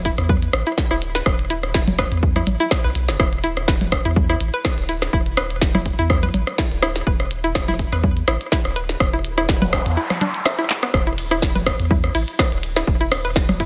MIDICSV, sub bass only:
0, 0, Header, 1, 2, 480
1, 0, Start_track
1, 0, Tempo, 483871
1, 1251, Time_signature, 4, 2, 24, 8
1, 13547, End_track
2, 0, Start_track
2, 0, Title_t, "Sub bass"
2, 0, Program_c, 0, 38
2, 0, Note_on_c, 0, 28, 93
2, 126, Note_off_c, 0, 28, 0
2, 181, Note_on_c, 0, 40, 104
2, 484, Note_off_c, 0, 40, 0
2, 531, Note_on_c, 0, 33, 87
2, 627, Note_off_c, 0, 33, 0
2, 901, Note_on_c, 0, 26, 104
2, 1204, Note_off_c, 0, 26, 0
2, 1251, Note_on_c, 0, 28, 100
2, 1490, Note_on_c, 0, 26, 84
2, 1505, Note_off_c, 0, 28, 0
2, 1621, Note_on_c, 0, 28, 96
2, 1636, Note_off_c, 0, 26, 0
2, 2046, Note_off_c, 0, 28, 0
2, 2100, Note_on_c, 0, 40, 102
2, 2404, Note_off_c, 0, 40, 0
2, 2450, Note_on_c, 0, 33, 88
2, 2546, Note_off_c, 0, 33, 0
2, 2821, Note_on_c, 0, 35, 99
2, 2902, Note_off_c, 0, 35, 0
2, 2930, Note_on_c, 0, 35, 105
2, 3060, Note_on_c, 0, 28, 81
2, 3075, Note_off_c, 0, 35, 0
2, 3141, Note_off_c, 0, 28, 0
2, 3170, Note_on_c, 0, 28, 101
2, 3410, Note_on_c, 0, 26, 84
2, 3425, Note_off_c, 0, 28, 0
2, 3542, Note_on_c, 0, 28, 93
2, 3556, Note_off_c, 0, 26, 0
2, 3966, Note_off_c, 0, 28, 0
2, 4021, Note_on_c, 0, 40, 100
2, 4324, Note_off_c, 0, 40, 0
2, 4370, Note_on_c, 0, 33, 88
2, 4466, Note_off_c, 0, 33, 0
2, 4741, Note_on_c, 0, 26, 106
2, 5044, Note_off_c, 0, 26, 0
2, 5090, Note_on_c, 0, 28, 104
2, 5330, Note_on_c, 0, 26, 81
2, 5345, Note_off_c, 0, 28, 0
2, 5461, Note_on_c, 0, 28, 96
2, 5476, Note_off_c, 0, 26, 0
2, 5886, Note_off_c, 0, 28, 0
2, 5941, Note_on_c, 0, 40, 102
2, 6244, Note_off_c, 0, 40, 0
2, 6291, Note_on_c, 0, 33, 85
2, 6387, Note_off_c, 0, 33, 0
2, 6661, Note_on_c, 0, 26, 104
2, 6964, Note_off_c, 0, 26, 0
2, 7011, Note_on_c, 0, 28, 102
2, 7251, Note_on_c, 0, 26, 83
2, 7266, Note_off_c, 0, 28, 0
2, 7381, Note_on_c, 0, 28, 98
2, 7396, Note_off_c, 0, 26, 0
2, 7806, Note_off_c, 0, 28, 0
2, 7862, Note_on_c, 0, 40, 102
2, 8165, Note_off_c, 0, 40, 0
2, 8211, Note_on_c, 0, 33, 87
2, 8307, Note_off_c, 0, 33, 0
2, 8582, Note_on_c, 0, 26, 102
2, 8885, Note_off_c, 0, 26, 0
2, 8931, Note_on_c, 0, 28, 101
2, 9171, Note_on_c, 0, 26, 85
2, 9186, Note_off_c, 0, 28, 0
2, 9302, Note_on_c, 0, 28, 97
2, 9317, Note_off_c, 0, 26, 0
2, 9726, Note_off_c, 0, 28, 0
2, 9782, Note_on_c, 0, 40, 100
2, 9891, Note_off_c, 0, 40, 0
2, 10851, Note_on_c, 0, 28, 103
2, 11091, Note_on_c, 0, 26, 83
2, 11106, Note_off_c, 0, 28, 0
2, 11222, Note_on_c, 0, 28, 96
2, 11237, Note_off_c, 0, 26, 0
2, 11646, Note_off_c, 0, 28, 0
2, 11702, Note_on_c, 0, 40, 101
2, 12005, Note_off_c, 0, 40, 0
2, 12051, Note_on_c, 0, 33, 84
2, 12147, Note_off_c, 0, 33, 0
2, 12422, Note_on_c, 0, 26, 106
2, 12725, Note_off_c, 0, 26, 0
2, 12771, Note_on_c, 0, 28, 101
2, 13011, Note_on_c, 0, 26, 84
2, 13026, Note_off_c, 0, 28, 0
2, 13142, Note_on_c, 0, 28, 93
2, 13156, Note_off_c, 0, 26, 0
2, 13547, Note_off_c, 0, 28, 0
2, 13547, End_track
0, 0, End_of_file